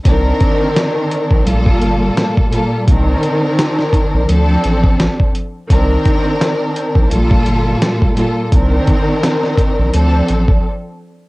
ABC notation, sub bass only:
X:1
M:4/4
L:1/16
Q:"Swing 16ths" 1/4=85
K:Cdor
V:1 name="Sub bass" clef=bass
C,,2 z4 z B,,, B,,,2 G,,,2 z4 | C,,2 z4 z B,,, D,,2 A,,,3 z3 | C,,2 z4 z B,,, B,,,2 G,,,2 z4 | C,,2 z4 z B,,, D,,2 A,,,2 z4 |]